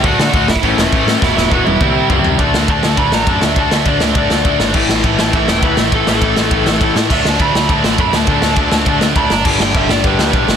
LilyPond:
<<
  \new Staff \with { instrumentName = "Overdriven electric guitar" } { \time 4/4 \key d \lydian \tempo 4 = 204 <fis' fis''>8 <fis' fis''>4 <e' e''>8 <cis' cis''>2 | <e' e''>8 <e' e''>8 <fis' fis''>8 <e' e''>4. r4 | r4 a''4 b''8 ais''8 a''8 e''8 | a''8 e''8 d''8 e''8 d''8 d''4. |
r4. a''8 e''8 g''8 b'8 e''8 | a'8 a'2. r8 | e''8 a''8 b''4 r4 b''8 a''8~ | a''2~ a''8 r8 b''8 ais''8 |
a''8 g''8 e''8 d''8 b'8 b'4. | }
  \new Staff \with { instrumentName = "Distorted electric guitar" } { \time 4/4 \key d \lydian <d a d' fis'>4 <d a d' fis'>8 r8 <a, e a cis' e'>4 <a, e a cis' e'>4 | <e gis b e'>4 <e gis b e'>4 <c g c' e'>4 <c g c' e'>4 | <d a d' fis'>4 <d a d' fis'>4 <d a d' fis'>4 <d a d' fis'>4 | <d a d' fis'>4 <d a d' fis'>4 <d a d' fis'>4 <d a d' fis'>4 |
<a, e a cis' e'>4 <a, e a cis' e'>4 <a, e a cis' e'>4 <a, e a cis' e'>4 | <a, e a cis' e'>4 <a, e a cis' e'>4 <a, e a cis' e'>4 <a, e a cis' e'>4 | <d fis a d'>4 <d fis a d'>4 <d fis a d'>4 <d fis a d'>4 | <d fis a d'>4 <d fis a d'>4 <d fis a d'>4 <d fis a d'>8 r8 |
<g, d g b d'>4 <g, d g b d'>4 <g, d g b d'>4 <g, d g b d'>4 | }
  \new Staff \with { instrumentName = "Overdriven electric guitar" } { \clef bass \time 4/4 \key d \lydian <d a d'>4 <d a d'>8 r8 <a, e a>4 <a, e a>4 | <e, b, e>4 <e, b, e>4 <c g c'>4 <c g c'>4 | <d a d'>4 <d a d'>4 <d a d'>4 <d a d'>4 | <d a d'>4 <d a d'>4 <d a d'>4 <d a d'>4 |
<a, e a>4 <a, e a>4 <a, e a>4 <a, e a>4 | <a, e a>4 <a, e a>4 <a, e a>4 <a, e a>4 | <d a d'>4 <d a d'>4 <d a d'>4 <d a d'>4 | <d a d'>4 <d a d'>4 <d a d'>4 <d a d'>8 r8 |
<g, d g>4 <g, d g>4 <g, d g>4 <g, d g>4 | }
  \new Staff \with { instrumentName = "Picked electric bass" } { \clef bass \time 4/4 \key d \lydian d,8 d8 d,8 a,,8 a,,8 e,,8 a,,8 a,8 | e,,8 e,,8 e,,8 e,,8 c,4 cis,4 | d,8 d,8 d,8 d,8 d,8 a,,8 fis,8 d,8 | d,8 d,8 d,8 d,8 d,8 d,8 d,8 gis,,8 |
a,,8 a,,8 a,,8 a,,8 a,,8 e,,8 d,8 a,,8 | a,,8 a,,8 a,,8 a,,8 a,,8 a,,8 a,,8 a,8 | d,8 d,8 d,8 d,8 d,8 a,,8 fis,8 d,8 | d,8 d,8 d,8 d,8 d,8 d,8 d,8 g,,8 |
g,,8 g,,8 g,,8 g,,8 g,,8 d,8 b,,8 g,,8 | }
  \new DrumStaff \with { instrumentName = "Drums" } \drummode { \time 4/4 <cymc bd>8 sn8 <cymc bd>8 sn16 bd16 <cymc bd>8 sn8 <cymc bd>8 sn8 | <bd sn>8 sn8 bd8 tommh8 <bd toml>4 <bd tomfh>8 tomfh8 | <bd cymr>8 sn8 <bd cymr>8 sn8 <bd cymr>8 sn8 <bd cymr>8 sn8 | <bd cymr>8 sn8 <bd cymr>8 sn8 <bd cymr>8 sn8 <bd cymr>8 sn8 |
<cymc bd>8 sn8 <bd cymr>8 sn8 <bd cymr>8 sn8 <bd cymr>8 sn8 | <bd cymr>8 sn8 <bd cymr>8 sn8 <bd cymr>8 sn8 <bd cymr>8 sn8 | <cymc bd>8 sn8 <bd cymr>8 sn8 <bd cymr>8 sn8 <bd cymr>8 sn8 | <bd cymr>8 sn8 <bd cymr>8 sn8 <bd cymr>8 sn8 <bd cymr>8 sn8 |
<cymc bd>8 sn8 <bd cymr>8 sn8 <bd cymr>8 sn8 <bd cymr>8 sn8 | }
>>